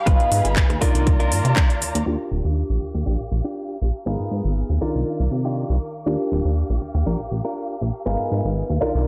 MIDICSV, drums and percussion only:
0, 0, Header, 1, 2, 480
1, 0, Start_track
1, 0, Key_signature, -3, "major"
1, 0, Tempo, 500000
1, 64, Time_signature, 4, 2, 24, 8
1, 8712, End_track
2, 0, Start_track
2, 0, Title_t, "Drums"
2, 64, Note_on_c, 9, 36, 118
2, 65, Note_on_c, 9, 42, 54
2, 160, Note_off_c, 9, 36, 0
2, 161, Note_off_c, 9, 42, 0
2, 192, Note_on_c, 9, 42, 27
2, 288, Note_off_c, 9, 42, 0
2, 304, Note_on_c, 9, 46, 102
2, 400, Note_off_c, 9, 46, 0
2, 431, Note_on_c, 9, 42, 54
2, 527, Note_off_c, 9, 42, 0
2, 540, Note_on_c, 9, 39, 122
2, 544, Note_on_c, 9, 36, 110
2, 545, Note_on_c, 9, 42, 57
2, 636, Note_off_c, 9, 39, 0
2, 640, Note_off_c, 9, 36, 0
2, 641, Note_off_c, 9, 42, 0
2, 672, Note_on_c, 9, 42, 28
2, 768, Note_off_c, 9, 42, 0
2, 783, Note_on_c, 9, 46, 101
2, 785, Note_on_c, 9, 36, 59
2, 879, Note_off_c, 9, 46, 0
2, 881, Note_off_c, 9, 36, 0
2, 913, Note_on_c, 9, 42, 56
2, 1009, Note_off_c, 9, 42, 0
2, 1025, Note_on_c, 9, 36, 115
2, 1025, Note_on_c, 9, 42, 53
2, 1121, Note_off_c, 9, 36, 0
2, 1121, Note_off_c, 9, 42, 0
2, 1152, Note_on_c, 9, 42, 26
2, 1248, Note_off_c, 9, 42, 0
2, 1264, Note_on_c, 9, 46, 98
2, 1360, Note_off_c, 9, 46, 0
2, 1392, Note_on_c, 9, 42, 56
2, 1488, Note_off_c, 9, 42, 0
2, 1500, Note_on_c, 9, 39, 121
2, 1505, Note_on_c, 9, 36, 115
2, 1506, Note_on_c, 9, 42, 56
2, 1596, Note_off_c, 9, 39, 0
2, 1601, Note_off_c, 9, 36, 0
2, 1602, Note_off_c, 9, 42, 0
2, 1633, Note_on_c, 9, 42, 27
2, 1729, Note_off_c, 9, 42, 0
2, 1745, Note_on_c, 9, 46, 102
2, 1841, Note_off_c, 9, 46, 0
2, 1874, Note_on_c, 9, 42, 57
2, 1970, Note_off_c, 9, 42, 0
2, 8712, End_track
0, 0, End_of_file